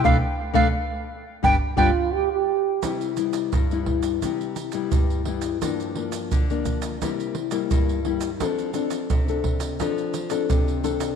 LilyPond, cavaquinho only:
\new Staff \with { instrumentName = "Cavaquinho" } { \time 4/4 \key g \mixolydian \tempo 4 = 86 <a' b' d''>16 r8 <a' b' d''>16 r4 <g' b' d''>16 r16 <g' b' d''>16 r4 r16 | \key c \major r1 | r1 | r1 | }